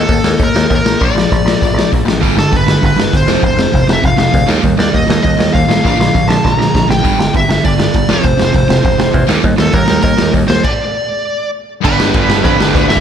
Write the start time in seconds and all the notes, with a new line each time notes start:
Already playing: A4
0.07 D#2 D#3 A#3, kick, open hi-hat
0.24 D#2 D#3 A#3, snare
0.39 D#2 D#3 A#3, kick, open hi-hat
0.44 A#4
0.55 D#2 D#3 A#3, snare
0.70 D#2 D#3 A#3, kick, open hi-hat
0.75 A#4
0.84 A1 D#3 A#3, snare
1.00 A#1 A#2 F3 A#3, kick, open hi-hat
1.04 D5
1.15 A#1 A#2 F3, snare
1.30 A#1 A#2 F3, kick, open hi-hat
1.45 A#1 A#2 F3, snare
1.62 A#1 A#2 F3, kick, open hi-hat
1.74 A#1
1.78 A#2 F3, snare
1.92 A#1 A#2 F3, kick, open hi-hat
2.05 A1 A#2 F3, snare
2.22 G1 G2 D3 G3, kick, open hi-hat
2.36 G1 G2 D3 A4, snare
2.52 G1 G2 D3, kick, open hi-hat
2.56 B4
2.66 G1 G2 D3, snare
2.81 G1 G2 D3, kick, open hi-hat
2.86 B4
2.96 G1 G2 D3, snare
3.12 G1 G2 D3, kick, open hi-hat
3.17 C5
3.26 F1 F2 C3 F3, snare
3.42 F1 F2 C3, kick, open hi-hat
3.46 C5
3.56 F1 F2 C3, snare
3.73 F1 F2 C3, kick, open hi-hat
3.87 F1 F2 C3, snare
3.93 E5
4.02 F1 F2 C3 F5, kick, open hi-hat
4.18 F1 F2 C3, snare
4.32 D2 F2 C3, kick, open hi-hat
4.48 D#2 D#3 G3 A#3 D#4, snare
4.62 D#2 D#3 G3 A#3, kick, open hi-hat
4.77 D#2 D#3 G3 A#3 D5, snare
4.91 D#2 D#3 G3 A#3, kick, open hi-hat
4.96 D#5
5.07 D#2 D#3 G3 A#3, snare
5.22 D#2 D#3 G3 A#3 D#5, kick, open hi-hat
5.37 D#2 D#3 G3 A#3, snare
5.52 D#2 D#3 G3 A#3 F5, kick, open hi-hat
5.68 A1 D#3 G3 A#3, snare
5.83 A#1 A#2 D3 F3 A#3 F5, kick, open hi-hat
5.98 A#1 A#2 D3 F3, snare
6.14 A#1 A#2 D3 F3, kick, open hi-hat
6.28 A#1 A#2 D3 F3 A5, snare
6.43 A#1 A#2 D3 F3 A#5, kick, snare
6.57 A#1 A#2 D3 F3, snare
6.74 A#1 A#2 D3 F3, kick, snare
6.87 A1 A#2 D3 F3 G5, snare
7.02 G1 G2 D3 G3, kick, open hi-hat
7.18 G1 G2 D3, snare
7.34 G1 G2 D3 E5, kick, open hi-hat
7.49 G1 G2 D3, snare
7.64 G1 G2 D3 D5, kick, open hi-hat
7.78 G1 G2 D3, snare
7.94 G1 G2 D3, kick, open hi-hat
8.09 F1 F2 C3 F3 C5, snare
8.23 F1 F2 C3, kick, open hi-hat
8.38 F1 F2 C3, snare
8.53 F1 F2 C3, kick, open hi-hat
8.69 F1 F2 C3, snare
8.83 F1 F2 C3, kick, open hi-hat
8.97 F1 F2 C3, snare
9.12 E2 F2 C3, kick, open hi-hat
9.27 D#2 D#3 G3 A#3 D#4, snare
9.43 D#2 D#3 G3 A#3, kick, open hi-hat
9.57 D#2 D#3 G3 A#3 A4, snare
9.72 D#2 D#3 G3 A#3 A#4, kick, open hi-hat
9.86 D#2 D#3 G3 A#3, snare
10.02 D#2 D#3 G3 A#3 A#4, kick, open hi-hat
10.18 D#2 D#3 G3 A#3, snare
10.33 D#2 D#3 G3 A#3, kick, open hi-hat
10.47 D#2 D#3 G3 A#3 C5, snare
10.63 D5, kick, crash
11.81 G1 G2 D3 G3 B4, kick, crash
11.86 B3 D4
11.98 G1 G2 D3 G3, snare
12.14 G1 G2 D3 G3, kick, crash
12.30 G2 D3 G3, snare
12.42 F2 G2 D3 G3 B3 D4 B4, kick, crash
12.59 G1 G2 D3 G3, snare
12.74 D2 G2 D3 G3, kick, crash
12.88 G1 G2 D3 G3 E5, snare
12.97 kick